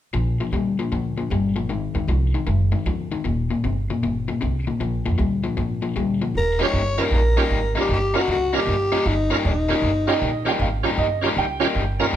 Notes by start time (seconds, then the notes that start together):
0.13 A#1 A#2 F3
0.40 A#2 F3
0.52 D2 A#2 G3
0.79 A#2 F3
0.92 D2 A#2 F3
1.18 A#2 F3
1.30 G1 A#2 G3
1.56 A#2 F3
1.69 G#1 G#2 D#3
1.95 D#2 G#2 D#3
2.08 C2 G#2 F3
2.34 G#2 D#3
2.47 F#1 G#2 D#3
2.72 G#2 D#3
2.86 D2 G#2 F3
3.12 G#2 D#3
3.24 D#1 D#2 A#2
3.50 D#2 A#2
3.64 G1 D#2 C3
3.90 D#2 A#2
4.03 G1 D#2 A#2
4.28 D#2 A#2
4.41 C2 D#2 C3
4.67 D#2 A#2
4.80 A#1 A#2 F3
5.06 F2 A#2 F3
5.18 D2 A#2 G3
5.44 A#2 F3
5.57 G#1 A#2 F3
5.82 A#2 F3
5.96 D2 A#2 G3
6.21 A#2 F3
6.35 D#1 A#4
6.59 D#3 G3 A#3 C#4 D#4 F4 G4 C#5
6.73 G1
6.98 D#3 G3 A#3 C#4 D#4 F4 A#4
7.11 A#1 A#4
7.37 D#3 G3 A#3 C#4 D#4 F4 G4
7.51 G#1
7.75 D#3 G3 A#3 C#4 D#4 F4 A#4
7.80 G4
7.89 G1
7.93 G4
8.14 D#3 G3 A#3 C#4 D#4 F4 F#4 A#4
8.28 C#2 F#4
8.53 D#3 G3 A#3 C#4 D#4 F4 G4 A#4
8.67 G1
8.92 D#3 G3 A#3 C#4 D#4 F4 G4
9.06 G1 D#4
9.30 D#3 G3 A#3 C#4 D#4 F4 A#4
9.45 D#1 D#4
9.69 D#3 G3 A#3 C#4 D#4 F4 G4
9.82 G1
10.07 D#3 G3 A#3 C#4 D#4 F4 G4 D#5
10.22 A#1
10.45 D#3 G3 A#3 C#4 D#4 F4 G4 G5
10.59 G#1 F5
10.83 D#3 G3 A#3 C#4 D#4 F4 G4
10.98 G1 D#5
11.21 D#3 G3 A#3 C#4 D#4 F4 G4
11.37 C#2 G5
11.60 D#3 G3 A#3 C#4 D#4 F4 G4
11.75 G1
11.99 D#3 G3 A#3 C#4 D#4 F4 A#4 A#5
12.13 G1